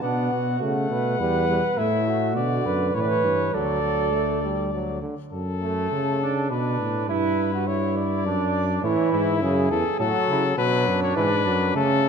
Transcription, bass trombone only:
0, 0, Header, 1, 2, 480
1, 0, Start_track
1, 0, Key_signature, 2, "major"
1, 0, Tempo, 586510
1, 25, Time_signature, 3, 2, 24, 8
1, 9892, End_track
2, 0, Start_track
2, 0, Title_t, "Bass trombone"
2, 0, Program_c, 0, 57
2, 21, Note_on_c, 0, 47, 64
2, 257, Note_off_c, 0, 47, 0
2, 262, Note_on_c, 0, 47, 58
2, 498, Note_on_c, 0, 49, 67
2, 510, Note_off_c, 0, 47, 0
2, 733, Note_off_c, 0, 49, 0
2, 738, Note_on_c, 0, 47, 65
2, 972, Note_off_c, 0, 47, 0
2, 977, Note_on_c, 0, 40, 80
2, 1316, Note_off_c, 0, 40, 0
2, 1455, Note_on_c, 0, 45, 79
2, 1933, Note_on_c, 0, 47, 77
2, 1946, Note_off_c, 0, 45, 0
2, 2168, Note_off_c, 0, 47, 0
2, 2172, Note_on_c, 0, 42, 67
2, 2407, Note_off_c, 0, 42, 0
2, 2412, Note_on_c, 0, 45, 84
2, 2652, Note_on_c, 0, 43, 68
2, 2665, Note_off_c, 0, 45, 0
2, 2894, Note_off_c, 0, 43, 0
2, 2899, Note_on_c, 0, 38, 66
2, 4090, Note_off_c, 0, 38, 0
2, 4358, Note_on_c, 0, 42, 66
2, 4808, Note_off_c, 0, 42, 0
2, 4842, Note_on_c, 0, 49, 84
2, 5326, Note_on_c, 0, 47, 82
2, 5339, Note_off_c, 0, 49, 0
2, 5558, Note_off_c, 0, 47, 0
2, 5563, Note_on_c, 0, 45, 66
2, 5801, Note_on_c, 0, 43, 75
2, 5813, Note_off_c, 0, 45, 0
2, 6752, Note_on_c, 0, 42, 79
2, 6765, Note_off_c, 0, 43, 0
2, 7221, Note_off_c, 0, 42, 0
2, 7226, Note_on_c, 0, 45, 66
2, 7334, Note_off_c, 0, 45, 0
2, 7465, Note_on_c, 0, 44, 76
2, 7706, Note_on_c, 0, 42, 83
2, 7719, Note_off_c, 0, 44, 0
2, 7938, Note_off_c, 0, 42, 0
2, 7943, Note_on_c, 0, 40, 78
2, 8051, Note_off_c, 0, 40, 0
2, 8179, Note_on_c, 0, 45, 84
2, 8288, Note_off_c, 0, 45, 0
2, 8417, Note_on_c, 0, 49, 73
2, 8647, Note_off_c, 0, 49, 0
2, 8652, Note_on_c, 0, 47, 78
2, 8896, Note_on_c, 0, 42, 75
2, 8909, Note_off_c, 0, 47, 0
2, 9134, Note_off_c, 0, 42, 0
2, 9139, Note_on_c, 0, 44, 78
2, 9378, Note_on_c, 0, 42, 76
2, 9391, Note_off_c, 0, 44, 0
2, 9612, Note_off_c, 0, 42, 0
2, 9616, Note_on_c, 0, 49, 88
2, 9892, Note_off_c, 0, 49, 0
2, 9892, End_track
0, 0, End_of_file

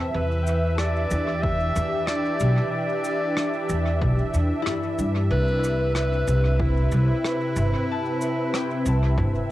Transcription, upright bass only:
0, 0, Header, 1, 2, 480
1, 0, Start_track
1, 0, Key_signature, 1, "minor"
1, 0, Tempo, 645161
1, 107, Time_signature, 4, 2, 24, 8
1, 7078, End_track
2, 0, Start_track
2, 0, Title_t, "Upright bass"
2, 0, Program_c, 0, 32
2, 0, Note_on_c, 0, 40, 100
2, 84, Note_off_c, 0, 40, 0
2, 107, Note_on_c, 0, 40, 97
2, 808, Note_off_c, 0, 40, 0
2, 827, Note_on_c, 0, 40, 98
2, 1288, Note_off_c, 0, 40, 0
2, 1308, Note_on_c, 0, 40, 101
2, 1432, Note_off_c, 0, 40, 0
2, 1790, Note_on_c, 0, 35, 103
2, 1913, Note_off_c, 0, 35, 0
2, 2749, Note_on_c, 0, 40, 98
2, 2964, Note_off_c, 0, 40, 0
2, 2988, Note_on_c, 0, 35, 92
2, 3112, Note_off_c, 0, 35, 0
2, 3228, Note_on_c, 0, 40, 82
2, 3352, Note_off_c, 0, 40, 0
2, 3709, Note_on_c, 0, 43, 87
2, 3924, Note_off_c, 0, 43, 0
2, 3947, Note_on_c, 0, 36, 103
2, 4648, Note_off_c, 0, 36, 0
2, 4669, Note_on_c, 0, 36, 101
2, 5129, Note_off_c, 0, 36, 0
2, 5148, Note_on_c, 0, 36, 105
2, 5272, Note_off_c, 0, 36, 0
2, 5627, Note_on_c, 0, 31, 105
2, 5751, Note_off_c, 0, 31, 0
2, 6588, Note_on_c, 0, 36, 96
2, 6804, Note_off_c, 0, 36, 0
2, 6828, Note_on_c, 0, 31, 93
2, 6952, Note_off_c, 0, 31, 0
2, 7078, End_track
0, 0, End_of_file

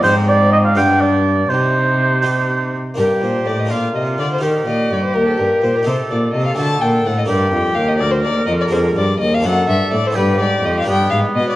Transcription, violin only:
0, 0, Header, 1, 2, 480
1, 0, Start_track
1, 0, Key_signature, -2, "minor"
1, 0, Tempo, 487409
1, 48, Time_signature, 6, 3, 24, 8
1, 4368, Tempo, 477707
1, 11525, End_track
2, 0, Start_track
2, 0, Title_t, "Violin"
2, 0, Program_c, 0, 40
2, 46, Note_on_c, 0, 60, 75
2, 747, Note_off_c, 0, 60, 0
2, 760, Note_on_c, 0, 62, 83
2, 1470, Note_off_c, 0, 62, 0
2, 1487, Note_on_c, 0, 63, 63
2, 2552, Note_off_c, 0, 63, 0
2, 2937, Note_on_c, 0, 70, 64
2, 3016, Note_off_c, 0, 70, 0
2, 3170, Note_on_c, 0, 72, 62
2, 3410, Note_on_c, 0, 74, 64
2, 3425, Note_off_c, 0, 72, 0
2, 3540, Note_on_c, 0, 75, 63
2, 3555, Note_off_c, 0, 74, 0
2, 3654, Note_on_c, 0, 77, 75
2, 3669, Note_off_c, 0, 75, 0
2, 3885, Note_off_c, 0, 77, 0
2, 3891, Note_on_c, 0, 75, 64
2, 3970, Note_off_c, 0, 75, 0
2, 4127, Note_on_c, 0, 74, 68
2, 4246, Note_off_c, 0, 74, 0
2, 4266, Note_on_c, 0, 72, 53
2, 4353, Note_off_c, 0, 72, 0
2, 4358, Note_on_c, 0, 70, 62
2, 4439, Note_off_c, 0, 70, 0
2, 4608, Note_on_c, 0, 75, 64
2, 4858, Note_on_c, 0, 74, 64
2, 4873, Note_off_c, 0, 75, 0
2, 4969, Note_off_c, 0, 74, 0
2, 4975, Note_on_c, 0, 72, 64
2, 5087, Note_on_c, 0, 70, 78
2, 5102, Note_off_c, 0, 72, 0
2, 5205, Note_off_c, 0, 70, 0
2, 5211, Note_on_c, 0, 69, 57
2, 5322, Note_on_c, 0, 70, 67
2, 5337, Note_off_c, 0, 69, 0
2, 5565, Note_on_c, 0, 72, 70
2, 5580, Note_off_c, 0, 70, 0
2, 5694, Note_on_c, 0, 70, 59
2, 5709, Note_off_c, 0, 72, 0
2, 5808, Note_off_c, 0, 70, 0
2, 5814, Note_on_c, 0, 72, 71
2, 5895, Note_off_c, 0, 72, 0
2, 6045, Note_on_c, 0, 74, 70
2, 6267, Note_off_c, 0, 74, 0
2, 6273, Note_on_c, 0, 75, 77
2, 6397, Note_off_c, 0, 75, 0
2, 6403, Note_on_c, 0, 77, 66
2, 6509, Note_off_c, 0, 77, 0
2, 6515, Note_on_c, 0, 81, 88
2, 6753, Note_on_c, 0, 79, 75
2, 6768, Note_off_c, 0, 81, 0
2, 7008, Note_on_c, 0, 78, 76
2, 7023, Note_off_c, 0, 79, 0
2, 7124, Note_off_c, 0, 78, 0
2, 7130, Note_on_c, 0, 75, 63
2, 7178, Note_off_c, 0, 75, 0
2, 7239, Note_on_c, 0, 74, 61
2, 7449, Note_off_c, 0, 74, 0
2, 7455, Note_on_c, 0, 79, 77
2, 7690, Note_on_c, 0, 77, 79
2, 7705, Note_off_c, 0, 79, 0
2, 7833, Note_on_c, 0, 75, 71
2, 7848, Note_off_c, 0, 77, 0
2, 7924, Note_off_c, 0, 75, 0
2, 7930, Note_on_c, 0, 74, 92
2, 8063, Note_on_c, 0, 72, 67
2, 8078, Note_off_c, 0, 74, 0
2, 8179, Note_off_c, 0, 72, 0
2, 8185, Note_on_c, 0, 74, 82
2, 8414, Note_off_c, 0, 74, 0
2, 8420, Note_on_c, 0, 75, 83
2, 8474, Note_off_c, 0, 75, 0
2, 8561, Note_on_c, 0, 74, 68
2, 8610, Note_off_c, 0, 74, 0
2, 8665, Note_on_c, 0, 72, 74
2, 8745, Note_off_c, 0, 72, 0
2, 8926, Note_on_c, 0, 74, 84
2, 9149, Note_off_c, 0, 74, 0
2, 9155, Note_on_c, 0, 75, 88
2, 9295, Note_on_c, 0, 77, 82
2, 9310, Note_off_c, 0, 75, 0
2, 9415, Note_on_c, 0, 78, 90
2, 9430, Note_off_c, 0, 77, 0
2, 9644, Note_off_c, 0, 78, 0
2, 9650, Note_on_c, 0, 76, 74
2, 9884, Note_off_c, 0, 76, 0
2, 9893, Note_on_c, 0, 74, 81
2, 10024, Note_on_c, 0, 72, 72
2, 10039, Note_off_c, 0, 74, 0
2, 10119, Note_off_c, 0, 72, 0
2, 10125, Note_on_c, 0, 71, 80
2, 10362, Note_off_c, 0, 71, 0
2, 10366, Note_on_c, 0, 74, 79
2, 10614, Note_on_c, 0, 75, 75
2, 10629, Note_off_c, 0, 74, 0
2, 10730, Note_off_c, 0, 75, 0
2, 10750, Note_on_c, 0, 77, 72
2, 10839, Note_off_c, 0, 77, 0
2, 10845, Note_on_c, 0, 79, 102
2, 11063, Note_off_c, 0, 79, 0
2, 11069, Note_on_c, 0, 77, 76
2, 11150, Note_off_c, 0, 77, 0
2, 11317, Note_on_c, 0, 75, 84
2, 11441, Note_off_c, 0, 75, 0
2, 11459, Note_on_c, 0, 74, 71
2, 11525, Note_off_c, 0, 74, 0
2, 11525, End_track
0, 0, End_of_file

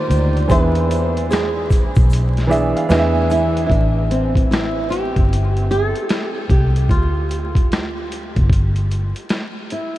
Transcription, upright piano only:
0, 0, Header, 1, 2, 480
1, 0, Start_track
1, 0, Tempo, 800000
1, 298, Time_signature, 4, 2, 24, 8
1, 5989, End_track
2, 0, Start_track
2, 0, Title_t, "Upright piano"
2, 0, Program_c, 0, 0
2, 0, Control_c, 0, 64, 127
2, 0, Note_on_c, 0, 51, 75
2, 0, Note_on_c, 0, 58, 63
2, 0, Note_on_c, 0, 65, 69
2, 0, Note_on_c, 0, 67, 70
2, 0, Note_on_c, 0, 74, 84
2, 125, Note_off_c, 0, 51, 0
2, 128, Note_off_c, 0, 58, 0
2, 131, Note_off_c, 0, 65, 0
2, 133, Note_off_c, 0, 67, 0
2, 137, Note_off_c, 0, 74, 0
2, 288, Note_on_c, 0, 52, 79
2, 295, Note_on_c, 0, 59, 72
2, 299, Note_on_c, 0, 62, 76
2, 305, Note_on_c, 0, 68, 70
2, 307, Control_c, 0, 64, 0
2, 310, Note_on_c, 0, 76, 87
2, 423, Control_c, 0, 64, 127
2, 1011, Note_off_c, 0, 52, 0
2, 1014, Note_off_c, 0, 59, 0
2, 1016, Note_off_c, 0, 62, 0
2, 1020, Note_off_c, 0, 68, 0
2, 1022, Note_off_c, 0, 76, 0
2, 1483, Note_on_c, 0, 52, 87
2, 1488, Note_on_c, 0, 59, 71
2, 1495, Note_on_c, 0, 62, 71
2, 1495, Note_on_c, 0, 74, 68
2, 1501, Note_on_c, 0, 68, 79
2, 1506, Note_on_c, 0, 76, 90
2, 1639, Note_off_c, 0, 74, 0
2, 1658, Note_on_c, 0, 77, 65
2, 1725, Note_off_c, 0, 52, 0
2, 1730, Note_off_c, 0, 59, 0
2, 1734, Note_on_c, 0, 52, 99
2, 1735, Note_off_c, 0, 62, 0
2, 1736, Note_off_c, 0, 76, 0
2, 1736, Note_off_c, 0, 77, 0
2, 1739, Note_off_c, 0, 68, 0
2, 1739, Note_on_c, 0, 59, 85
2, 1744, Note_on_c, 0, 62, 79
2, 1745, Note_on_c, 0, 76, 70
2, 1746, Control_c, 0, 64, 0
2, 1751, Note_on_c, 0, 68, 83
2, 1756, Note_on_c, 0, 75, 92
2, 1787, Note_off_c, 0, 76, 0
2, 1796, Note_on_c, 0, 76, 105
2, 1797, Note_off_c, 0, 75, 0
2, 1855, Control_c, 0, 64, 127
2, 1980, Note_on_c, 0, 80, 71
2, 2147, Note_off_c, 0, 52, 0
2, 2150, Note_off_c, 0, 59, 0
2, 2152, Note_off_c, 0, 62, 0
2, 2155, Note_off_c, 0, 68, 0
2, 2178, Note_off_c, 0, 76, 0
2, 2202, Note_off_c, 0, 80, 0
2, 2227, Control_c, 0, 64, 0
2, 2340, Control_c, 0, 64, 127
2, 4145, Control_c, 0, 64, 0
2, 5989, End_track
0, 0, End_of_file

